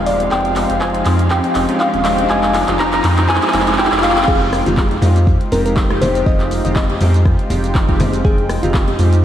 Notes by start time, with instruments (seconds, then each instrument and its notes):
Already playing: analog synth bass D#1, analog synth pad F3 D#4 F4 C5 F5, analog polysynth G#3 C4 D#4 F4 G4, violin section G#3 F5, riser
0.06 synth pluck D5, open hi-hat
0.20 closed hi-hat
0.31 analog synth bass F1, analog polysynth G#3 C4 D#4 F4 G4, synth pluck G5, kick, clap
0.45 closed hi-hat
0.56 clap, open hi-hat
0.70 analog synth bass F1, analog polysynth G#3 C4 D#4 F4 G4, closed hi-hat
0.81 synth pluck G#5, kick, clap
0.94 closed hi-hat
1.05 analog synth bass F2, analog polysynth G#3 C4 D#4 F4 G4, clap, open hi-hat
1.19 closed hi-hat
1.30 analog polysynth G#3 C4 D#4 F4 G4, synth pluck G5, kick, clap
1.44 closed hi-hat
1.55 analog synth bass F1, clap, open hi-hat
1.69 analog polysynth G#3 C4 D#4 F4 G4, closed hi-hat
1.80 synth pluck F5, kick, clap
1.93 analog synth bass D#1, closed hi-hat
2.05 analog polysynth G#3 C4 D#4 F4 G4, synth pluck D#5, clap, open hi-hat
2.18 closed hi-hat
2.29 analog synth bass F1, analog polysynth G3 G#3 C4 D#4 F4, synth pluck G#5, kick, clap
2.43 clap, closed hi-hat
2.54 clap, open hi-hat
2.68 analog synth bass F1, analog polysynth G#3 C4 D#4 F4 G4, clap, closed hi-hat
2.79 analog polysynth G#3 C4 D#4 F4 G4, synth pluck A#5, kick, clap
2.93 clap, closed hi-hat
3.04 analog synth bass F2, clap, open hi-hat
3.17 analog polysynth G#3 C4 D#4 F4 G4, clap, closed hi-hat
3.28 analog polysynth G#3 C4 D#4 F4 G4, synth pluck G#5, kick, clap
3.36 clap
3.42 clap, closed hi-hat
3.48 clap
3.53 analog synth bass F1, analog polysynth G#3 C4 D#4 F4 G4, clap, open hi-hat
3.60 clap
3.67 clap, closed hi-hat
3.73 clap
3.78 analog polysynth G#3 C4 D#4 F4 G4, synth pluck G5, kick, clap
3.85 clap
3.92 analog synth bass F1, kick, clap, closed hi-hat
3.98 clap
4.03 analog polysynth G#3 C4 D#4 F4 G4, synth pluck F5, clap, open hi-hat
4.10 clap
4.17 clap, closed hi-hat
4.22 clap
4.28 analog synth bass F1, analog polysynth G#3 C4 D#4 F4 G5, analog synth pad G#3 D#4 C5 F5 G5, fm electric piano G#4, kick, crash, shaker
4.42 closed hi-hat
4.53 cross-stick, open hi-hat, high bongo, shaker
4.66 analog synth bass F1, analog polysynth G#3 C4 D#4 F4 G4, fm electric piano F4, closed hi-hat, high conga, shaker
4.77 kick, clap, shaker
4.91 closed hi-hat, high bongo
5.02 analog synth bass F2, analog polysynth G#3 C4 D#4 F4 G4, open hi-hat, low conga, shaker
5.16 closed hi-hat, shaker
5.27 kick, shaker
5.41 closed hi-hat
5.52 analog synth bass F1, analog polysynth G#3 C4 D#4 F4 G4, fm electric piano A#4, open hi-hat, low conga, shaker
5.66 fm electric piano A#4, closed hi-hat, shaker
5.76 kick, clap, high bongo, shaker
5.90 analog synth bass F1, analog polysynth G#3 C4 D#4 F4 G4, cross-stick, closed hi-hat
6.01 fm electric piano C5, open hi-hat, high conga, low conga, shaker
6.15 closed hi-hat, shaker
6.26 analog synth bass F1, analog polysynth G#3 C4 D#4 F4 G4, fm electric piano D#5, kick, shaker
6.40 clap, closed hi-hat
6.51 open hi-hat, high bongo, shaker
6.65 analog synth bass F1, analog polysynth G#3 C4 D#4 F4 G4, fm electric piano D#5, closed hi-hat, high conga, shaker
6.76 fm electric piano D#5, kick, clap
6.90 closed hi-hat, high bongo
7.00 analog synth bass F2, analog polysynth G#3 C4 D#4 F4 G4, open hi-hat, low conga, shaker
7.14 closed hi-hat, shaker
7.25 kick, cross-stick, shaker
7.39 closed hi-hat
7.50 analog synth bass F1, analog polysynth G#3 C4 D#4 F4 G4, open hi-hat, low conga, shaker
7.64 closed hi-hat, shaker
7.75 kick, clap, shaker
7.89 analog synth bass F1, analog polysynth G#3 C4 D#4 F4 G4, kick, closed hi-hat
8.00 open hi-hat, high conga, low conga, shaker
8.13 closed hi-hat, high bongo, shaker
8.25 analog synth bass F1, analog polysynth G#3 C4 D#4 F4 G5, fm electric piano G#4, analog synth pad D#5, kick, shaker
8.38 closed hi-hat
8.49 cross-stick, open hi-hat, high bongo, shaker
8.63 analog synth bass F1, analog polysynth G#3 C4 D#4 F4 G4, fm electric piano F4, closed hi-hat, high conga, shaker
8.74 kick, clap, shaker
8.88 closed hi-hat, high bongo
8.99 analog synth bass F2, analog polysynth G#3 C4 D#4 F4 G4, open hi-hat, low conga, shaker
9.13 closed hi-hat, shaker